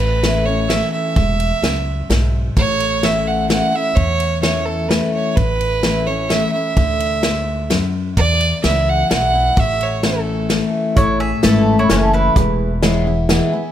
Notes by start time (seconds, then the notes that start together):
Already playing: A1 A2 B4
0.00 ride
0.23 E3 A3 C#4 E4, snare, ride
0.46 C#4 E4 C#5
0.69 E3 A3 C#4 E4 E5, snare, ride
0.92 E5
1.16 E1 E2, kick, ride
1.40 ride
1.62 C#2 F#2, snare, ride
2.09 B1 G#2, snare, ride
2.56 A1 A2 C#5, kick, ride
2.80 ride
3.03 E3 A3 C#4 E4 E5, snare, ride
3.27 F#5
3.49 E3 A3 C#4 E4 F#5, snare, ride
3.73 C#4 E4 E5
3.96 E2 C#5, kick, ride
4.20 ride
4.42 E3 A3 C#4 E4 C#5, snare, ride
4.65 A4
4.89 E3 A3 C#4 E4 B4, snare, ride
5.14 C#5
5.36 A1 A2 B4, kick, ride
5.61 ride
5.83 E3 A3 C#4 E4, snare, ride
6.06 C#4 E4 C#5
6.29 E3 A3 C#4 E4 E5, snare, ride
6.52 C#4 E4 E5
6.77 D2 D3, kick, ride
7.00 ride
7.23 G#2, snare, ride
7.70 F#2, snare, ride
8.17 E2 D5, kick, ride
8.41 ride
8.63 C#2 E3 G#3 B3 E4 E5, snare, ride
8.89 F#5
9.10 B1 E3 G#3 B3 E4 F#5, snare, ride
9.34 B3 E4
9.57 A1 A2 E5, kick, ride
9.81 C#5, ride
10.03 E3 A3 C#4 E4 A4, snare, ride
10.49 E3 A3 C#4 E4, snare, ride
10.95 A1 A2 E4 A4 C#5, kick, closed hi-hat
11.20 G#4 E5
11.43 G#1 E3 A3 C#4 E4 A4 B4 E5, snare, closed hi-hat
11.79 E4 C#5
11.89 F#1 E3 A3 C#4 E4 A4 C#5, snare, closed hi-hat
12.13 E4 B4
12.36 E1 E2 E4 G#4 B4, kick, closed hi-hat
12.82 E3 G#3 B3 E4 G#4 C#5, snare, closed hi-hat
13.07 B3 E4 E5
13.29 E3 G#3 B3 E4 G#4 B4 F#5, snare, closed hi-hat
13.52 B3 E4 G#5